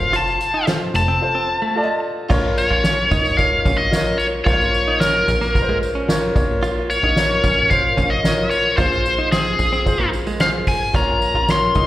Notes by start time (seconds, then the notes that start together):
Already playing: F1 F4 A4 C5 F5
0.13 F4 A5, closed hi-hat, tambourine
0.27 tambourine
0.41 closed hi-hat, tambourine
0.54 D#4
0.66 F4 A4 C5, snare, closed hi-hat, tambourine
0.94 F1 A5, closed hi-hat, tambourine
1.08 C4
1.21 F4 A4 C5
1.35 C4
1.62 A3
1.76 F4 A4 D5
1.83 D#5
2.29 A#1 A#2 F4 A#4 C#5, kick, crash, tambourine
2.57 C#5, ride, tambourine
2.71 A#1 F4
2.83 F4 A#4 C#5, snare, ride, tambourine
3.11 C#2 D#4, kick, ride, tambourine
3.25 tambourine
3.37 F4 A#4 C#5 F5, kick, ride, tambourine
3.65 A#1 C#4, kick, ride, tambourine
3.77 D#5
3.91 F4 A#4 C#5, snare, ride, tambourine
4.18 C#5, ride, tambourine
4.33 ride
4.44 A#1 A#2 F4 A#4 C5 C#5, kick, ride, tambourine
4.53 C#5
4.61 tambourine
4.73 ride, tambourine
4.88 D#4
4.99 C#4 F4 A#4 C#5, snare, ride, tambourine
5.27 A#1, ride, tambourine
5.41 A#3, snare, tambourine
5.54 F4 A#4 B4, kick, ride, tambourine
5.62 C5
5.69 G#3
5.82 ride, tambourine
5.95 C#4, ride
6.08 F4 A#4 C#5, snare, ride, tambourine
6.35 A#1 A#2 F4 A#4 C#5, kick, ride, tambourine
6.63 F4, ride, tambourine
6.90 C#5, ride, tambourine
7.03 A#1 D#4
7.16 F4 A#4 C#5, snare, tambourine
7.43 A#1 C#4, kick, ride, tambourine
7.69 F4 A#4 C5 F5, kick, ride, tambourine
7.97 A#1 C#4, kick, ride, tambourine
8.10 D#5
8.24 F4 A#4 C#5, snare, ride, tambourine
8.51 C#5, ride, tambourine
8.64 ride
8.77 A#1 A#2 F4 G#4 C5, kick, ride, tambourine
8.92 tambourine
9.05 ride, tambourine
9.19 D#4
9.31 C4 F4 G#4 C5, snare, ride, tambourine
9.47 tambourine
9.59 A#1, ride, tambourine
9.73 C4, tambourine
9.85 F4 G#4 C5, kick, ride, tambourine
10.00 A#3
10.13 ride, tambourine
10.27 G#3, tambourine
10.39 F4 G#4 C5 F5, snare, ride, tambourine
10.67 G#5, kick, open hi-hat, ride, tambourine
10.93 A#1 A#2 F4 A#4 C#5 A#5, kick, hi-hat pedal, ride, tambourine
11.22 ride, tambourine
11.34 A#1 F4
11.47 F4 A#4 C#5 C6, snare, ride, tambourine
11.75 C#2 D#4, kick, ride, tambourine